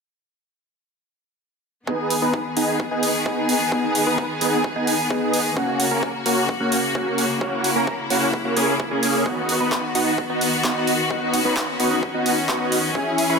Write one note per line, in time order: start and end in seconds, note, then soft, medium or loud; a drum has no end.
1.87 5.53 D#3 medium
1.87 5.53 B3 medium
1.87 2.16 B3 medium
1.87 2.16 D#4 medium
1.87 5.53 G#4 medium
1.87 2.16 G#4 medium
1.87 kick loud
2.10 open hi-hat loud
2.22 2.40 B3 medium
2.22 2.40 D#4 medium
2.22 2.40 B4 medium
2.34 kick loud
2.57 2.74 B3 medium
2.57 2.74 D#4 medium
2.57 2.74 G#4 medium
2.57 open hi-hat loud
2.80 kick loud
2.91 3.09 B3 medium
2.91 3.09 D#4 medium
2.91 3.09 G#4 medium
3.03 open hi-hat loud
3.26 3.54 B3 medium
3.26 3.54 D#4 medium
3.26 3.54 G#4 medium
3.26 kick loud
3.49 open hi-hat loud
3.72 4.00 B3 medium
3.72 4.00 D#4 medium
3.72 4.00 G#4 medium
3.72 kick loud
3.95 open hi-hat loud
4.07 4.24 B3 medium
4.07 4.24 D#4 medium
4.07 4.24 B4 medium
4.18 kick loud
4.41 4.59 B3 medium
4.41 4.59 D#4 medium
4.41 4.59 G#4 medium
4.41 open hi-hat loud
4.64 kick loud
4.76 4.93 B3 medium
4.76 4.93 D#4 medium
4.76 4.93 G#4 medium
4.87 open hi-hat loud
5.10 5.39 B3 medium
5.10 5.39 D#4 medium
5.10 5.39 G#4 medium
5.10 kick loud
5.33 open hi-hat loud
5.57 9.22 C#3 medium
5.57 9.22 A#3 medium
5.57 5.85 A#3 medium
5.57 5.85 C#4 medium
5.57 5.85 F#4 medium
5.57 7.39 F#4 medium
5.57 kick loud
5.80 open hi-hat loud
5.91 6.09 A#3 medium
5.91 6.09 C#4 medium
5.91 6.09 A#4 medium
6.03 kick loud
6.26 6.43 A#3 medium
6.26 6.43 C#4 medium
6.26 6.43 F#4 medium
6.26 open hi-hat loud
6.49 kick loud
6.60 6.78 A#3 medium
6.60 6.78 C#4 medium
6.60 6.78 F#4 medium
6.72 open hi-hat loud
6.95 7.23 A#3 medium
6.95 7.23 C#4 medium
6.95 7.23 F#4 medium
6.95 kick loud
7.18 open hi-hat loud
7.41 7.69 A#3 medium
7.41 7.69 C#4 medium
7.41 9.24 E4 medium
7.41 7.69 F#4 medium
7.41 kick loud
7.64 open hi-hat loud
7.76 7.93 A#3 medium
7.76 7.93 C#4 medium
7.76 7.93 A#4 medium
7.87 kick loud
8.10 8.28 A#3 medium
8.10 8.28 C#4 medium
8.10 8.28 F#4 medium
8.10 open hi-hat loud
8.34 kick loud
8.45 8.54 A#3 medium
8.45 8.54 C#4 medium
8.45 8.54 F#4 medium
8.57 8.74 A#3 medium
8.57 8.74 C#4 medium
8.57 8.74 G#4 loud
8.57 open hi-hat loud
8.80 kick loud
8.91 9.23 A#3 medium
8.91 9.23 C#4 medium
8.91 9.23 G#4 loud
9.03 open hi-hat loud
9.26 12.91 D#3 medium
9.26 11.09 B3 medium
9.26 9.54 B3 medium
9.26 9.54 D#4 medium
9.26 12.91 F#4 medium
9.26 9.54 F#4 medium
9.26 kick loud
9.49 open hi-hat loud
9.60 9.78 B3 medium
9.60 9.78 D#4 medium
9.60 9.78 B4 medium
9.72 kick loud
9.72 clap loud
9.95 10.13 B3 medium
9.95 10.13 D#4 medium
9.95 10.13 F#4 medium
9.95 open hi-hat loud
10.18 kick loud
10.30 10.47 B3 medium
10.30 10.47 D#4 medium
10.30 10.47 F#4 medium
10.41 open hi-hat loud
10.64 10.93 B3 medium
10.64 10.93 D#4 medium
10.64 10.93 F#4 medium
10.64 kick loud
10.64 clap loud
10.87 open hi-hat medium
11.10 11.39 B3 medium
11.10 13.39 C#4 medium
11.10 11.39 D#4 medium
11.10 11.39 F#4 medium
11.10 kick loud
11.34 open hi-hat loud
11.45 11.63 B3 medium
11.45 11.63 D#4 medium
11.45 11.63 B4 medium
11.56 kick loud
11.56 clap loud
11.80 11.97 B3 medium
11.80 11.97 D#4 medium
11.80 11.97 F#4 medium
11.80 open hi-hat medium
12.03 kick loud
12.14 12.32 B3 medium
12.14 12.32 D#4 medium
12.14 12.32 F#4 medium
12.26 open hi-hat loud
12.49 12.77 B3 medium
12.49 12.77 D#4 medium
12.49 12.77 F#4 medium
12.49 kick loud
12.49 clap loud
12.72 open hi-hat medium
12.95 13.39 E3 medium
12.95 13.23 C#4 medium
12.95 13.23 E4 medium
12.95 13.39 G#4 medium
12.95 13.23 G#4 medium
12.95 kick loud
13.18 open hi-hat medium
13.30 13.39 C#4 medium
13.30 13.39 E4 medium
13.30 13.39 B4 medium